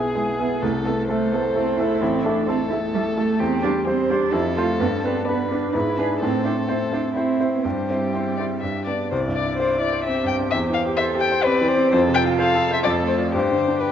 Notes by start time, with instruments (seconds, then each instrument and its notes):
Already playing: grand piano B1 B3 E4 G#4, violin G#4
0.15 cello G#3, grand piano B3 E4 G#4
0.38 cello B3, grand piano B3 E4 G#4
0.61 grand piano C2, cello A3, violin A4
0.85 grand piano A3 E4 A4, cello B3
1.08 cello A3, grand piano A3 E4 A4, violin C5
1.31 grand piano A3 E4 A4, cello B3
1.55 grand piano A3 E4 A4, cello C4
1.77 grand piano A3 E4 A4, cello E4
2.01 grand piano A1, cello C4, violin E4
2.24 grand piano A3 E4 A4, cello D4
2.46 grand piano A3 E4 A4, cello C4, violin A4
2.69 grand piano A3 E4, cello E4
2.73 grand piano A4
2.94 cello G3, grand piano A3 E4 A4
3.17 grand piano A3 E4 A4, cello A3
3.39 grand piano E2, cello C4, violin G4
3.63 grand piano G3 G4 C5, cello D4
3.85 grand piano G3 G4 C5, cello C4, violin G4 C5
4.10 grand piano G3 G4 C5, cello D4
4.32 grand piano F2, cello E4, violin A4
4.56 grand piano A3 F4 C5, cello F4
4.79 grand piano G2, cello B3
5.03 grand piano B3 D4 B4, cello C4
5.25 cello B3, grand piano B3 D4 B4, violin B4 D5
5.50 grand piano B3 D4 B4, cello D4
5.73 grand piano G#2, cello E4, violin B4 D5
5.98 grand piano D4 E4 B4, cello G#4
6.20 grand piano A2, cello C4, violin A4 C5
6.44 grand piano C4 E4 C5, cello D4
6.67 cello C4, grand piano C4 E4 C5, violin C5
6.92 grand piano C4 E4 C5, cello D4
7.14 grand piano C4 E4 C5, cello C4, violin E4 C5
7.40 grand piano C4 E4 C5
7.55 cello B3
7.63 grand piano G2, cello G3, violin G4 C5
7.90 grand piano C4 E4 C5
8.13 grand piano C4 E4 C5, violin C5
8.36 grand piano C4 E4 C5, violin D5
8.60 grand piano G2, violin E5
8.86 grand piano B3 D4 D5, violin D5
9.10 grand piano C2, cello E4, violin C5 D5
9.27 grand piano G2
9.34 violin D5
9.44 grand piano E4
9.57 violin C5, grand piano C5
9.76 grand piano E4
9.81 violin D5
9.93 grand piano C5
10.04 grand piano C4, cello G4, violin C5 E5
10.23 grand piano G2
10.27 violin G5
10.38 grand piano C4
10.51 grand piano E2, violin C5 E5
10.70 grand piano E3, violin F5
10.86 grand piano G4
10.97 cello A4, grand piano C5, violin E5
11.15 grand piano G4
11.21 violin G5
11.32 grand piano C5
11.44 grand piano C4, cello G4, violin B4 D5
11.61 grand piano E3
11.68 violin C5
11.77 grand piano C4
11.91 grand piano F2, cello F4, violin A4 C5
12.08 grand piano C3
12.14 violin G5
12.24 grand piano F4
12.38 violin A4 F5, grand piano C5
12.55 grand piano A4
12.71 grand piano C5, violin E5
12.83 grand piano F2, cello A4, violin A4 D5
13.02 grand piano A3
13.07 violin C5
13.18 grand piano F4 D5
13.31 grand piano G2, violin G4 C5, cello G4
13.51 grand piano D3
13.68 grand piano D4
13.80 violin G4 B4, grand piano D5